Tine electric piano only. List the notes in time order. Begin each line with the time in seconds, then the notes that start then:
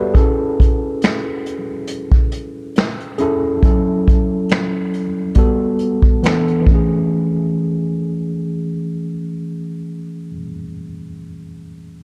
Already playing: G3 B3 G#4 A4 B4 C#5 D5 E5 F#5
0.00 F#4
0.14 C#4 E4 G#4 A4
3.18 C#4 E4 G#4 A4
3.62 F#3 C#4 E4 A4
5.36 G3 B3 F#4 A4
6.23 E3 B3 D4 A4
6.61 E3
6.66 A3
6.70 C#4
6.75 G#4